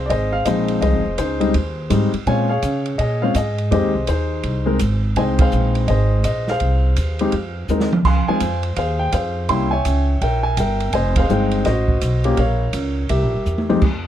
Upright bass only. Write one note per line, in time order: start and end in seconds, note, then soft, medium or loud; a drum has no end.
0.10 0.45 G#1 medium
0.46 0.81 A#1 medium
0.82 0.94 C2 medium
0.94 1.06 G#1 soft
1.06 1.17 F1 medium
1.18 1.53 C#2 medium
1.54 1.89 D#2 medium
1.91 2.12 G#2 medium
2.13 muted upright bass stroke soft
2.26 2.61 A#2 medium
2.63 2.98 C#3 medium
2.99 3.34 A#2 medium
3.35 3.70 G#2 medium
3.71 3.83 F2 medium
3.83 3.95 D#2 soft
3.95 4.06 C2 medium
4.08 4.43 D#2 medium
4.44 4.79 C2 medium
4.80 5.15 G#1 medium
5.16 5.51 C2 medium
5.53 5.87 A#1 medium
5.89 6.23 G#1 medium
6.25 6.59 A#1 medium
6.61 6.96 C2 medium
6.97 7.32 D#2 medium
7.33 7.68 F2 medium
7.68 8.03 D#2 medium
8.05 8.26 C#2 medium
8.28 muted upright bass stroke soft
8.41 8.76 F2 medium
8.77 9.12 D#2 medium
9.13 9.48 F2 medium
9.49 9.84 C2 medium
9.86 10.20 C#2 medium
10.21 10.56 A#1 medium
10.57 10.92 G1 medium
10.93 11.28 F1 medium
11.30 11.65 G1 medium
11.65 12.00 A1 medium
12.02 12.37 B1 medium
12.37 12.73 A#1 medium
12.73 13.09 C#2 medium
13.10 13.22 C2 medium
13.22 13.33 A#1 medium
13.34 13.45 G1 medium
13.46 13.81 E2 medium
13.82 14.07 F2 medium